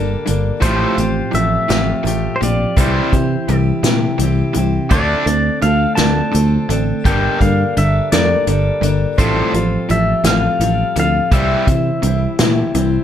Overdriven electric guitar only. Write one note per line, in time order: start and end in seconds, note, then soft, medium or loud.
0.00 0.23 G2 medium
0.00 0.24 D3 medium
0.26 0.59 G2 medium
0.26 0.59 D3 medium
0.60 0.95 A2 medium
0.60 0.95 F3 medium
0.60 0.96 A3 medium
0.96 1.30 A2 medium
0.96 1.30 F3 medium
1.32 1.65 A2 medium
1.32 1.66 F3 medium
1.69 2.02 A2 medium
1.69 2.02 F3 medium
2.03 2.37 A2 medium
2.03 2.37 F3 medium
2.41 2.74 A2 medium
2.41 2.73 F3 medium
2.77 3.10 C3 medium
2.77 3.11 E3 loud
2.77 3.11 G3 loud
3.13 3.45 C3 medium
3.13 3.45 E3 medium
3.49 3.81 C3 medium
3.49 3.81 E3 medium
3.84 4.16 C3 medium
3.84 4.16 E3 medium
4.18 4.51 C3 medium
4.18 4.51 E3 medium
4.53 4.87 C3 medium
4.53 4.87 E3 medium
4.90 5.24 D3 medium
4.90 5.24 A3 medium
4.90 5.25 D4 loud
5.26 5.59 D3 medium
5.26 5.59 A3 medium
5.62 5.95 D3 medium
5.62 5.95 A3 medium
5.97 6.30 D3 medium
5.97 6.30 A3 medium
6.32 6.65 D3 medium
6.32 6.65 A3 medium
6.69 7.01 D3 medium
6.69 7.01 A3 medium
7.05 7.38 G2 loud
7.05 7.39 D3 medium
7.05 7.39 G3 medium
7.40 7.73 G2 medium
7.40 7.73 D3 medium
7.77 8.09 G2 medium
7.77 8.09 D3 medium
8.13 8.45 G2 medium
8.13 8.45 D3 medium
8.48 8.80 G2 medium
8.48 8.80 D3 medium
8.81 9.15 G2 medium
8.81 9.15 D3 medium
9.18 9.52 A2 loud
9.18 9.52 F3 medium
9.18 9.52 A3 loud
9.54 9.86 A2 medium
9.54 9.87 F3 medium
9.89 10.22 A2 medium
9.89 10.22 F3 medium
10.24 10.57 A2 medium
10.24 10.57 F3 medium
10.61 10.93 A2 medium
10.61 10.94 F3 medium
10.96 11.29 A2 medium
10.96 11.29 F3 medium
11.32 11.66 C3 medium
11.32 11.66 E3 loud
11.32 11.66 G3 medium
11.67 12.00 C3 medium
11.67 12.00 E3 medium
12.03 12.35 C3 medium
12.03 12.36 E3 medium
12.39 12.72 C3 medium
12.39 12.72 E3 medium
12.75 13.04 C3 medium
12.75 13.04 E3 medium